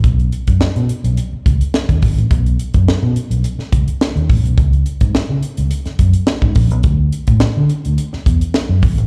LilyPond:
<<
  \new Staff \with { instrumentName = "Fingered electric bass" } { \clef bass \time 4/4 \key cis \dorian \tempo 4 = 106 b,,8 r16 fis,16 r16 b,16 r16 b,,16 r8 cis,16 r8 dis,16 gis,,16 a,,16 | b,,8 r16 fis,16 r16 b,16 r16 b,,16 r8 cis,16 r8 dis,16 a,,16 b,,16 | cis,8 r16 gis,16 r16 cis16 r16 cis,16 r8 fis,16 r8 gis,16 ais,,16 b,,16 | d,8 r16 a,16 r16 d16 r16 d,16 r8 e,16 r8 fis,16 gis,,16 a,,16 | }
  \new DrumStaff \with { instrumentName = "Drums" } \drummode { \time 4/4 <hh bd>16 hh16 hh16 <hh bd>16 sn16 hh16 hh16 hh16 hh8 <hh bd>16 hh16 sn16 <hh bd>16 <hho bd>16 hh16 | <hh bd>16 hh16 hh16 <hh bd>16 sn8 hh16 hh16 hh16 sn16 <hh bd>16 hh16 sn16 hh16 <hho bd>16 hh16 | <hh bd>16 hh16 hh16 <hh bd>16 sn8 hh16 hh16 hh16 <hh sn>16 <hh bd>16 hh16 sn16 bd16 <hho bd>16 hh16 | <hh bd>8 hh16 <hh bd>16 sn8 hh16 hh16 hh16 sn16 <hh bd>16 hh16 sn8 <hho bd>16 hh16 | }
>>